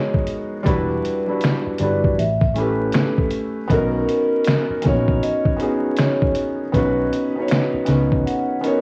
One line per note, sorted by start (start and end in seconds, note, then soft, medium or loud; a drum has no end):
0.00 0.68 G#3 medium
0.00 0.68 B3 medium
0.00 0.67 D#4 medium
0.00 0.68 F#4 medium
0.00 0.56 G#4 medium
0.00 0.68 A#4 medium
0.00 0.25 C#5 medium
0.14 kick medium
0.27 closed hi-hat medium
0.63 1.01 E1 loud
0.63 1.16 G3 medium
0.63 1.17 D4 medium
0.63 1.18 E4 medium
0.63 1.76 B4 loud
0.63 kick loud
0.63 closed hi-hat medium
0.68 1.19 F#4 medium
0.68 1.19 B4 loud
1.05 closed hi-hat medium
1.26 1.73 G3 medium
1.26 1.74 D4 medium
1.26 1.74 E4 medium
1.31 1.75 F#4 medium
1.31 1.76 B4 medium
1.41 finger snap loud
1.41 snare loud
1.41 closed hi-hat medium
1.67 muted fingered electric bass stroke soft
1.78 2.15 G1 medium
1.78 2.17 G3 medium
1.78 2.18 D4 medium
1.78 2.19 E4 medium
1.78 2.18 D5 medium
1.78 closed hi-hat medium
1.83 2.19 F#4 medium
1.83 2.20 B4 medium
2.04 kick medium
2.18 2.90 A1 loud
2.18 2.52 E5 medium
2.18 closed hi-hat medium
2.41 kick loud
2.54 3.57 A3 medium
2.54 3.58 C#4 medium
2.54 3.58 E4 medium
2.54 3.70 A4 medium
2.54 closed hi-hat medium
2.59 3.59 G4 medium
2.59 3.60 B4 medium
2.92 finger snap medium
2.92 snare loud
2.92 closed hi-hat medium
3.18 kick medium
3.30 closed hi-hat medium
3.68 4.04 B1 loud
3.68 4.71 B3 medium
3.68 4.71 C#4 medium
3.68 4.72 D#4 medium
3.68 4.80 A#4 loud
3.68 kick loud
3.68 closed hi-hat medium
3.73 4.73 F#4 medium
3.73 4.74 A#4 loud
4.09 closed hi-hat medium
4.44 finger snap loud
4.44 snare loud
4.44 closed hi-hat medium
4.70 muted fingered electric bass stroke soft
4.82 5.51 B3 medium
4.82 5.51 C#4 medium
4.82 5.52 D#4 medium
4.82 5.18 C#5 medium
4.82 kick loud
4.82 snare soft
4.82 closed hi-hat medium
4.86 5.19 A#1 medium
4.86 5.53 F#4 medium
4.86 5.54 C#5 medium
5.08 kick medium
5.23 5.56 D#5 medium
5.23 closed hi-hat medium
5.45 kick loud
5.57 6.60 B3 medium
5.57 6.61 C#4 medium
5.57 6.62 D#4 medium
5.57 5.94 B4 medium
5.57 closed hi-hat medium
5.61 6.62 F#4 medium
5.61 6.63 G#4 medium
5.97 6.32 C#5 medium
5.97 finger snap medium
5.97 snare loud
5.97 closed hi-hat medium
6.22 kick medium
6.35 closed hi-hat medium
6.72 7.08 B1 loud
6.72 7.25 B3 medium
6.72 7.25 C#4 medium
6.72 7.26 D#4 medium
6.72 7.84 B4 loud
6.72 kick loud
6.72 closed hi-hat medium
6.77 7.27 F#4 medium
6.77 7.28 B4 loud
7.13 closed hi-hat medium
7.36 7.82 B3 medium
7.36 7.82 C#4 medium
7.36 7.83 D#4 medium
7.40 7.84 F#4 medium
7.40 7.85 C#5 medium
7.48 finger snap loud
7.48 snare loud
7.48 closed hi-hat medium
7.74 muted fingered electric bass stroke soft
7.85 8.22 C#2 medium
7.85 8.54 B3 medium
7.85 8.55 C#4 medium
7.85 8.56 D#4 medium
7.85 8.22 D#5 medium
7.85 snare soft
7.85 closed hi-hat medium
7.90 8.56 F#4 medium
7.90 8.57 B4 medium
8.12 kick medium
8.26 8.60 F#5 medium
8.26 closed hi-hat medium
8.61 8.81 B3 medium
8.61 8.81 C#4 medium
8.61 8.81 D#4 medium
8.61 8.81 A#4 medium
8.61 closed hi-hat medium
8.66 8.81 F#4 medium
8.66 8.81 C#5 medium